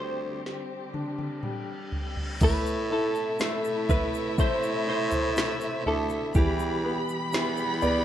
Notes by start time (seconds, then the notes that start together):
Already playing: D2 D3 G3 C4 D4 G4 C5
0.45 snare, reverse cymbal
0.94 D4, high tom
1.19 high tom
1.43 G3, mid tom
1.92 floor tom
2.17 floor tom
2.41 A2 B2 C3 A3 E4 B4 E5, kick, floor tom, crash, shaker
2.66 shaker
2.91 E4 A4
3.15 shaker
3.39 A2 A3, snare, shaker
3.65 shaker
3.89 E4 B4, kick, floor tom, shaker
4.14 shaker
4.38 A2 A3 C5, kick, shaker
4.63 shaker
4.87 E4 C5
5.11 floor tom, shaker
5.36 A3, snare, shaker
5.61 shaker
5.86 D2 E4 A4, floor tom
6.09 shaker
6.34 E2 E3 G3 G4 B5, kick, floor tom, shaker
6.60 shaker
6.84 B3
7.09 shaker
7.33 E2 E3, snare, shaker
7.57 shaker
7.82 B3 D5, floor tom, shaker